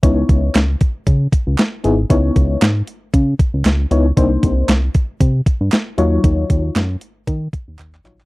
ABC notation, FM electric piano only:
X:1
M:4/4
L:1/16
Q:"Swing 16ths" 1/4=116
K:C#dor
V:1 name="FM electric piano"
[B,DEc]4 z8 z2 [B,DEG] z | [B,DEc]4 z8 z2 [B,DEc] z | [_B,=D_E=c]4 z8 z2 [F,^D^E^c]2- | [F,D^Ec]4 z8 z2 [F,DEc] z |]